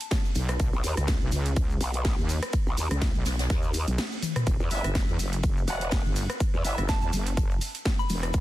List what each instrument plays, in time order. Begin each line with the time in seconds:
0.01 closed hi-hat, maracas
0.11 kick, snare, closed hi-hat, ride, maracas
0.25 closed hi-hat, maracas
0.35 wobble bass B1, closed hi-hat, open hi-hat, maracas
0.49 cross-stick, closed hi-hat, maracas
0.60 wobble bass B1, kick, closed hi-hat, ride, maracas
0.73 wobble bass B1, closed hi-hat, maracas
0.84 wobble bass D#2, closed hi-hat, open hi-hat, maracas
0.97 wobble bass C#2, cross-stick, closed hi-hat, maracas
1.07 kick, snare, closed hi-hat, ride, maracas
1.21 wobble bass B1, maracas
1.32 wobble bass C#2, closed hi-hat, open hi-hat, maracas
1.46 closed hi-hat, maracas
1.56 kick, closed hi-hat, ride, maracas
1.70 maracas
1.81 wobble bass B1, closed hi-hat, open hi-hat, maracas
1.94 closed hi-hat, maracas
2.04 kick, snare, closed hi-hat, open hi-hat, ride, maracas
2.18 wobble bass D#2, maracas
2.29 closed hi-hat, open hi-hat, maracas
2.43 cross-stick, closed hi-hat, maracas
2.53 kick, closed hi-hat, ride, maracas
2.67 wobble bass B1, maracas
2.77 wobble bass D#2, closed hi-hat, open hi-hat, maracas
2.91 wobble bass C#2, cross-stick, closed hi-hat, maracas
3.01 kick, snare, closed hi-hat, ride, maracas
3.15 wobble bass B1, maracas
3.25 wobble bass B1, snare, closed hi-hat, open hi-hat, maracas
3.39 snare, closed hi-hat, maracas
3.50 wobble bass D#2, kick, snare, closed hi-hat, ride, maracas
3.62 closed hi-hat, maracas
3.74 closed hi-hat, open hi-hat, maracas
3.87 wobble bass B1, closed hi-hat, maracas
3.98 snare, closed hi-hat, ride, maracas
4.12 maracas
4.23 closed hi-hat, open hi-hat, high tom, maracas
4.36 cross-stick, closed hi-hat, mid tom, maracas
4.47 wobble bass E1, kick, closed hi-hat, ride, maracas
4.60 wobble bass E2, closed hi-hat, maracas
4.70 wobble bass G1, horn section B3 E4 G4 E5, closed hi-hat, open hi-hat, maracas
4.84 wobble bass F#1, cross-stick, closed hi-hat, maracas
4.95 kick, snare, closed hi-hat, ride, maracas
5.09 wobble bass E2, maracas
5.19 wobble bass F#1, closed hi-hat, open hi-hat, maracas
5.32 closed hi-hat, maracas
5.43 kick, closed hi-hat, ride, maracas
5.57 maracas
5.68 wobble bass E1, horn section B3 F#4 G4 F#5, closed hi-hat, open hi-hat, maracas
5.81 closed hi-hat, maracas
5.91 kick, snare, closed hi-hat, open hi-hat, ride, maracas
6.05 wobble bass G1, maracas
6.16 closed hi-hat, open hi-hat, maracas
6.30 cross-stick, closed hi-hat, maracas
6.40 kick, closed hi-hat, ride, maracas
6.54 wobble bass E2, maracas
6.65 wobble bass G1, horn section B3 E4 G4 E5, closed hi-hat, open hi-hat, maracas
6.78 wobble bass F#1, cross-stick, closed hi-hat, maracas
6.88 synth bell A5, kick, snare, closed hi-hat, ride, maracas
7.02 wobble bass E2, synth bell A5, maracas
7.13 wobble bass F#1, closed hi-hat, open hi-hat, maracas
7.27 closed hi-hat, maracas
7.37 kick, closed hi-hat, ride, maracas
7.50 closed hi-hat, maracas
7.61 closed hi-hat, open hi-hat, maracas
7.75 closed hi-hat, maracas
7.85 kick, snare, closed hi-hat, ride, maracas
7.99 synth bell B5, closed hi-hat, maracas
8.09 wobble bass E1, closed hi-hat, open hi-hat, maracas
8.23 cross-stick, closed hi-hat, maracas
8.33 wobble bass E1, kick, closed hi-hat, ride, maracas